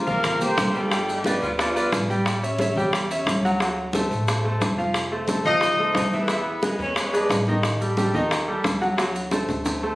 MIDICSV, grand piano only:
0, 0, Header, 1, 2, 480
1, 0, Start_track
1, 0, Tempo, 336511
1, 1298, Time_signature, 4, 2, 24, 8
1, 14193, End_track
2, 0, Start_track
2, 0, Title_t, "Grand piano"
2, 0, Program_c, 0, 0
2, 93, Note_on_c, 0, 53, 87
2, 97, Note_on_c, 0, 65, 88
2, 98, Note_on_c, 0, 77, 88
2, 489, Note_off_c, 0, 53, 0
2, 491, Note_off_c, 0, 65, 0
2, 492, Note_off_c, 0, 77, 0
2, 580, Note_on_c, 0, 58, 81
2, 591, Note_on_c, 0, 67, 78
2, 596, Note_on_c, 0, 72, 78
2, 973, Note_off_c, 0, 58, 0
2, 979, Note_off_c, 0, 67, 0
2, 983, Note_off_c, 0, 72, 0
2, 1053, Note_on_c, 0, 55, 78
2, 1057, Note_on_c, 0, 67, 90
2, 1065, Note_on_c, 0, 79, 86
2, 1252, Note_off_c, 0, 55, 0
2, 1255, Note_off_c, 0, 67, 0
2, 1259, Note_off_c, 0, 79, 0
2, 1292, Note_on_c, 0, 55, 76
2, 1300, Note_on_c, 0, 67, 77
2, 1301, Note_on_c, 0, 79, 76
2, 1689, Note_off_c, 0, 55, 0
2, 1693, Note_off_c, 0, 67, 0
2, 1693, Note_off_c, 0, 79, 0
2, 1790, Note_on_c, 0, 59, 75
2, 1797, Note_on_c, 0, 71, 77
2, 1803, Note_on_c, 0, 74, 79
2, 2179, Note_off_c, 0, 59, 0
2, 2183, Note_off_c, 0, 71, 0
2, 2187, Note_off_c, 0, 74, 0
2, 2264, Note_on_c, 0, 59, 67
2, 2267, Note_on_c, 0, 71, 69
2, 2271, Note_on_c, 0, 74, 76
2, 2459, Note_off_c, 0, 59, 0
2, 2460, Note_off_c, 0, 71, 0
2, 2463, Note_off_c, 0, 74, 0
2, 2509, Note_on_c, 0, 59, 75
2, 2511, Note_on_c, 0, 71, 83
2, 2513, Note_on_c, 0, 74, 83
2, 2898, Note_off_c, 0, 59, 0
2, 2900, Note_off_c, 0, 71, 0
2, 2901, Note_off_c, 0, 74, 0
2, 2996, Note_on_c, 0, 55, 91
2, 2999, Note_on_c, 0, 67, 83
2, 3003, Note_on_c, 0, 79, 76
2, 3382, Note_off_c, 0, 55, 0
2, 3384, Note_off_c, 0, 67, 0
2, 3387, Note_off_c, 0, 79, 0
2, 3470, Note_on_c, 0, 61, 75
2, 3475, Note_on_c, 0, 73, 83
2, 3475, Note_on_c, 0, 76, 75
2, 3662, Note_off_c, 0, 61, 0
2, 3665, Note_off_c, 0, 73, 0
2, 3665, Note_off_c, 0, 76, 0
2, 3710, Note_on_c, 0, 61, 84
2, 3714, Note_on_c, 0, 73, 89
2, 3720, Note_on_c, 0, 76, 84
2, 3902, Note_off_c, 0, 61, 0
2, 3905, Note_off_c, 0, 73, 0
2, 3908, Note_off_c, 0, 76, 0
2, 3949, Note_on_c, 0, 55, 87
2, 3955, Note_on_c, 0, 67, 85
2, 3958, Note_on_c, 0, 79, 86
2, 4339, Note_off_c, 0, 55, 0
2, 4342, Note_off_c, 0, 67, 0
2, 4344, Note_off_c, 0, 79, 0
2, 4433, Note_on_c, 0, 61, 79
2, 4436, Note_on_c, 0, 73, 89
2, 4445, Note_on_c, 0, 76, 80
2, 4820, Note_off_c, 0, 61, 0
2, 4822, Note_off_c, 0, 73, 0
2, 4828, Note_off_c, 0, 76, 0
2, 4918, Note_on_c, 0, 54, 93
2, 4919, Note_on_c, 0, 66, 79
2, 4925, Note_on_c, 0, 78, 88
2, 5107, Note_off_c, 0, 54, 0
2, 5107, Note_off_c, 0, 66, 0
2, 5111, Note_off_c, 0, 78, 0
2, 5159, Note_on_c, 0, 54, 74
2, 5165, Note_on_c, 0, 66, 72
2, 5171, Note_on_c, 0, 78, 78
2, 5544, Note_off_c, 0, 54, 0
2, 5548, Note_off_c, 0, 66, 0
2, 5551, Note_off_c, 0, 78, 0
2, 5635, Note_on_c, 0, 57, 80
2, 5635, Note_on_c, 0, 69, 84
2, 5645, Note_on_c, 0, 72, 79
2, 6022, Note_off_c, 0, 57, 0
2, 6022, Note_off_c, 0, 69, 0
2, 6028, Note_off_c, 0, 72, 0
2, 6118, Note_on_c, 0, 57, 68
2, 6123, Note_on_c, 0, 69, 62
2, 6129, Note_on_c, 0, 72, 70
2, 6307, Note_off_c, 0, 57, 0
2, 6310, Note_off_c, 0, 69, 0
2, 6313, Note_off_c, 0, 72, 0
2, 6352, Note_on_c, 0, 57, 80
2, 6354, Note_on_c, 0, 72, 79
2, 6357, Note_on_c, 0, 69, 87
2, 6740, Note_off_c, 0, 57, 0
2, 6741, Note_off_c, 0, 72, 0
2, 6742, Note_off_c, 0, 69, 0
2, 6817, Note_on_c, 0, 53, 80
2, 6820, Note_on_c, 0, 65, 77
2, 6826, Note_on_c, 0, 77, 90
2, 7211, Note_off_c, 0, 53, 0
2, 7213, Note_off_c, 0, 65, 0
2, 7216, Note_off_c, 0, 77, 0
2, 7299, Note_on_c, 0, 57, 77
2, 7305, Note_on_c, 0, 69, 70
2, 7308, Note_on_c, 0, 72, 76
2, 7495, Note_off_c, 0, 57, 0
2, 7499, Note_off_c, 0, 69, 0
2, 7501, Note_off_c, 0, 72, 0
2, 7551, Note_on_c, 0, 57, 75
2, 7552, Note_on_c, 0, 69, 79
2, 7562, Note_on_c, 0, 72, 75
2, 7742, Note_off_c, 0, 57, 0
2, 7743, Note_off_c, 0, 69, 0
2, 7749, Note_off_c, 0, 72, 0
2, 7785, Note_on_c, 0, 53, 84
2, 7795, Note_on_c, 0, 65, 88
2, 7796, Note_on_c, 0, 77, 93
2, 8175, Note_off_c, 0, 53, 0
2, 8181, Note_off_c, 0, 65, 0
2, 8182, Note_off_c, 0, 77, 0
2, 8262, Note_on_c, 0, 57, 86
2, 8267, Note_on_c, 0, 69, 84
2, 8272, Note_on_c, 0, 72, 78
2, 8653, Note_off_c, 0, 57, 0
2, 8657, Note_off_c, 0, 69, 0
2, 8660, Note_off_c, 0, 72, 0
2, 8749, Note_on_c, 0, 52, 89
2, 8751, Note_on_c, 0, 64, 86
2, 8755, Note_on_c, 0, 76, 81
2, 8941, Note_off_c, 0, 52, 0
2, 8942, Note_off_c, 0, 64, 0
2, 8944, Note_off_c, 0, 76, 0
2, 8985, Note_on_c, 0, 52, 77
2, 8990, Note_on_c, 0, 64, 73
2, 8994, Note_on_c, 0, 76, 85
2, 9375, Note_off_c, 0, 52, 0
2, 9378, Note_off_c, 0, 64, 0
2, 9380, Note_off_c, 0, 76, 0
2, 9460, Note_on_c, 0, 68, 80
2, 9461, Note_on_c, 0, 56, 83
2, 9468, Note_on_c, 0, 71, 73
2, 9852, Note_off_c, 0, 68, 0
2, 9853, Note_off_c, 0, 56, 0
2, 9857, Note_off_c, 0, 71, 0
2, 9935, Note_on_c, 0, 56, 63
2, 9942, Note_on_c, 0, 68, 69
2, 9945, Note_on_c, 0, 71, 71
2, 10132, Note_off_c, 0, 56, 0
2, 10136, Note_off_c, 0, 68, 0
2, 10138, Note_off_c, 0, 71, 0
2, 10175, Note_on_c, 0, 68, 84
2, 10177, Note_on_c, 0, 56, 82
2, 10183, Note_on_c, 0, 71, 79
2, 10569, Note_off_c, 0, 68, 0
2, 10570, Note_off_c, 0, 56, 0
2, 10573, Note_off_c, 0, 71, 0
2, 10670, Note_on_c, 0, 51, 95
2, 10672, Note_on_c, 0, 63, 77
2, 10682, Note_on_c, 0, 75, 93
2, 11058, Note_off_c, 0, 51, 0
2, 11059, Note_off_c, 0, 63, 0
2, 11065, Note_off_c, 0, 75, 0
2, 11136, Note_on_c, 0, 55, 77
2, 11142, Note_on_c, 0, 67, 75
2, 11145, Note_on_c, 0, 69, 71
2, 11333, Note_off_c, 0, 55, 0
2, 11336, Note_off_c, 0, 67, 0
2, 11338, Note_off_c, 0, 69, 0
2, 11379, Note_on_c, 0, 55, 86
2, 11382, Note_on_c, 0, 67, 86
2, 11392, Note_on_c, 0, 69, 82
2, 11574, Note_off_c, 0, 55, 0
2, 11576, Note_off_c, 0, 67, 0
2, 11582, Note_off_c, 0, 69, 0
2, 11618, Note_on_c, 0, 51, 98
2, 11621, Note_on_c, 0, 63, 92
2, 11624, Note_on_c, 0, 75, 87
2, 12010, Note_off_c, 0, 51, 0
2, 12012, Note_off_c, 0, 63, 0
2, 12014, Note_off_c, 0, 75, 0
2, 12096, Note_on_c, 0, 55, 80
2, 12097, Note_on_c, 0, 67, 82
2, 12104, Note_on_c, 0, 69, 86
2, 12489, Note_off_c, 0, 55, 0
2, 12490, Note_off_c, 0, 67, 0
2, 12494, Note_off_c, 0, 69, 0
2, 12572, Note_on_c, 0, 54, 80
2, 12574, Note_on_c, 0, 66, 89
2, 12577, Note_on_c, 0, 78, 86
2, 12770, Note_off_c, 0, 54, 0
2, 12771, Note_off_c, 0, 66, 0
2, 12773, Note_off_c, 0, 78, 0
2, 12802, Note_on_c, 0, 54, 86
2, 12809, Note_on_c, 0, 66, 69
2, 12815, Note_on_c, 0, 78, 71
2, 13201, Note_off_c, 0, 54, 0
2, 13205, Note_off_c, 0, 66, 0
2, 13208, Note_off_c, 0, 78, 0
2, 13290, Note_on_c, 0, 57, 78
2, 13292, Note_on_c, 0, 69, 86
2, 13298, Note_on_c, 0, 72, 78
2, 13686, Note_off_c, 0, 57, 0
2, 13687, Note_off_c, 0, 69, 0
2, 13690, Note_off_c, 0, 72, 0
2, 13771, Note_on_c, 0, 57, 69
2, 13776, Note_on_c, 0, 69, 65
2, 13776, Note_on_c, 0, 72, 64
2, 13970, Note_off_c, 0, 57, 0
2, 13972, Note_off_c, 0, 69, 0
2, 13972, Note_off_c, 0, 72, 0
2, 14024, Note_on_c, 0, 57, 82
2, 14030, Note_on_c, 0, 69, 75
2, 14037, Note_on_c, 0, 72, 81
2, 14193, Note_off_c, 0, 57, 0
2, 14193, Note_off_c, 0, 69, 0
2, 14193, Note_off_c, 0, 72, 0
2, 14193, End_track
0, 0, End_of_file